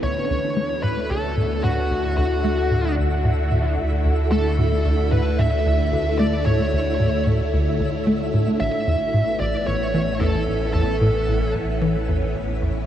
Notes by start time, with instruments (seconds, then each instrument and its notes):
Already playing: string machine B3 C#4
0.03 sub bass D2, analog synth bass D2, string machine D3, synth texture E4 E5, lead electric guitar C#5
0.30 analog synth bass D2
0.56 analog synth bass A3, string machine E4 F#4
0.83 analog synth bass A2, string machine A3, lead electric guitar B4
1.10 analog synth bass D2, lead electric guitar A4
1.37 analog synth bass A2
1.64 analog synth bass A2, lead electric guitar F#4
1.91 analog synth bass D2
2.17 analog synth bass D2, lead electric guitar F#4
2.44 analog synth bass A3
2.71 analog synth bass A2
2.98 analog synth bass D2
3.24 analog synth bass A2
3.51 analog synth bass A2
3.78 analog synth bass D2
4.05 analog synth bass D2
4.32 analog synth bass A3, lead electric guitar A4
4.58 analog synth bass A2
4.85 analog synth bass D2
5.12 analog synth bass A2, lead electric guitar B4
5.39 analog synth bass A2, lead electric guitar E5
5.66 analog synth bass D2
5.93 analog synth bass D2
6.19 analog synth bass A3, lead electric guitar D5
6.46 analog synth bass A2, lead electric guitar C#5
6.73 analog synth bass D2
7.00 analog synth bass A2
7.27 analog synth bass A2
7.53 analog synth bass D2
7.80 analog synth bass D2
8.07 analog synth bass A3
8.34 analog synth bass A2
8.60 sub bass A1, analog synth bass A1, string machine A2, lead electric guitar E5
8.87 analog synth bass E2
9.14 analog synth bass A2
9.22 string machine B3
9.36 string machine E3, lead electric guitar D5
9.41 analog synth bass A1
9.67 analog synth bass A1, lead electric guitar C#5
9.84 string machine C#4
9.94 analog synth bass E3
10.20 analog synth bass E2, lead electric guitar A4
10.47 analog synth bass A1
10.74 analog synth bass E2, lead electric guitar A4
11.01 analog synth bass A2
11.28 analog synth bass A1
11.55 analog synth bass A1
11.81 analog synth bass E3
12.09 analog synth bass E2
12.35 analog synth bass A1
12.62 analog synth bass E2